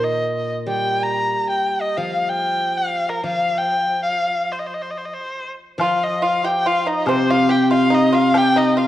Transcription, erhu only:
0.04 D#5
0.69 G5
1.03 A#5
1.50 G5
1.81 D#5
1.97 F5
2.29 G5
2.77 F5
3.09 A#4
3.26 F5
3.58 G5
4.03 F5
4.52 C5
4.59 D#5
4.67 C5
4.74 D#5
4.82 C5
4.90 D#5
4.97 C5
5.05 D#5
5.14 C5
5.79 F5
6.03 D#5
6.23 F5
6.45 G5
6.67 F5
6.88 D#5
7.08 C5
7.30 F5
7.51 G5
7.72 F5
7.94 D#5
8.14 F5
8.38 G5
8.58 D#5
8.78 F5

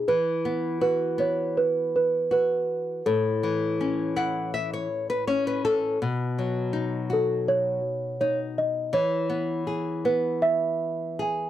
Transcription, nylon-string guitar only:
0.08 E3
0.45 B3
0.81 F#4
1.18 B3
2.31 F#4
3.06 A2
3.43 E3
3.81 C#4
4.16 E4 F#5
4.54 E5
4.73 C#5
5.10 B4
5.27 C#4 C#5
5.47 B4
5.65 A4
6.02 B2
6.39 F#3
6.73 D#4
7.10 F#4
8.21 D#4
8.93 E3
9.30 B3
9.67 G#4
10.05 B3
11.19 G#4

